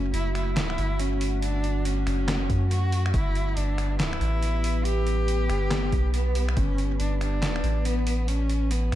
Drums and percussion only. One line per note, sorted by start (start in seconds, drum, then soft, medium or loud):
0.14 closed hi-hat medium
0.35 finger snap medium
0.35 closed hi-hat medium
0.57 snare loud
0.57 clap medium
0.57 closed hi-hat medium
0.70 finger snap medium
0.78 closed hi-hat medium
0.99 closed hi-hat medium
1.21 open hi-hat medium
1.42 closed hi-hat medium
1.64 closed hi-hat soft
1.85 closed hi-hat medium
2.07 finger snap medium
2.07 open hi-hat medium
2.28 snare loud
2.28 clap medium
2.28 closed hi-hat medium
2.50 kick medium
2.50 closed hi-hat medium
2.71 closed hi-hat medium
2.92 open hi-hat medium
3.06 finger snap medium
3.14 kick loud
3.14 closed hi-hat medium
3.35 closed hi-hat medium
3.57 closed hi-hat medium
3.78 finger snap medium
3.78 closed hi-hat medium
4.00 snare loud
4.00 clap medium
4.00 closed hi-hat medium
4.13 finger snap medium
4.21 closed hi-hat medium
4.43 closed hi-hat medium
4.64 open hi-hat loud
4.85 closed hi-hat medium
5.07 closed hi-hat medium
5.28 closed hi-hat medium
5.50 finger snap medium
5.50 closed hi-hat medium
5.71 snare loud
5.71 clap medium
5.71 closed hi-hat medium
5.92 kick medium
5.92 closed hi-hat medium
6.14 closed hi-hat medium
6.35 open hi-hat loud
6.49 finger snap medium
6.57 kick loud
6.57 closed hi-hat medium
6.78 closed hi-hat medium
7.00 closed hi-hat medium
7.21 finger snap medium
7.21 closed hi-hat medium
7.42 snare loud
7.42 clap medium
7.42 closed hi-hat medium
7.56 finger snap medium
7.64 closed hi-hat medium
7.85 closed hi-hat medium
8.07 open hi-hat loud
8.28 closed hi-hat medium
8.50 closed hi-hat medium
8.71 closed hi-hat medium